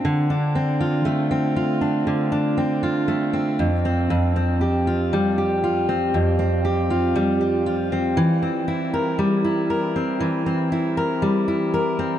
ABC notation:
X:1
M:4/4
L:1/16
Q:1/4=59
K:F
V:1 name="Steel-string acoustic guitar"
D, D C F A, C F D D, D C F A, C F,, C | F,, C G F G, G F C F,, C G F G, G F C | E, C E B G, E B C E, C E B G, E B C |]